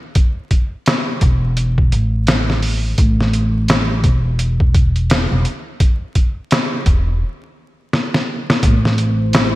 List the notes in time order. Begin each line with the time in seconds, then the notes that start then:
0.15 kick, closed hi-hat
0.51 kick, closed hi-hat
0.86 snare, closed hi-hat
1.21 E1, kick, closed hi-hat
1.57 closed hi-hat
1.78 kick
1.92 A1, closed hi-hat
2.27 snare, closed hi-hat
2.50 snare
2.63 open hi-hat
2.98 A1, kick, closed hi-hat
3.20 snare
3.33 closed hi-hat
3.68 snare, closed hi-hat
4.04 E1, kick, closed hi-hat
4.39 closed hi-hat
4.60 kick
4.74 kick, closed hi-hat
4.96 closed hi-hat
5.10 snare, closed hi-hat
5.32 E1
5.45 closed hi-hat
5.80 kick, closed hi-hat
6.15 kick, closed hi-hat
6.51 snare, closed hi-hat
6.86 E1, kick, closed hi-hat
7.93 snare
8.14 snare
8.50 snare
8.63 A1 A3 E4 C5, kick, closed hi-hat
8.85 snare
8.98 closed hi-hat
9.33 snare, closed hi-hat